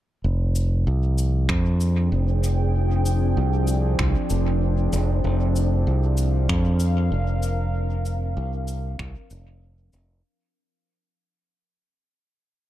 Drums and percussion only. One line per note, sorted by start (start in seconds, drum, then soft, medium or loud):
0.56 cabasa medium
1.18 cabasa medium
1.49 finger snap medium
1.49 kick loud
1.81 cabasa medium
2.44 cabasa medium
3.06 cabasa medium
3.67 cabasa medium
3.99 finger snap medium
3.99 kick loud
4.30 cabasa medium
4.93 cabasa medium
5.56 cabasa medium
6.17 cabasa medium
6.49 finger snap medium
6.49 kick loud
6.80 cabasa medium
7.43 cabasa medium
8.05 cabasa medium
8.68 cabasa medium
8.99 finger snap medium
8.99 kick loud
9.30 cabasa medium
9.93 cabasa medium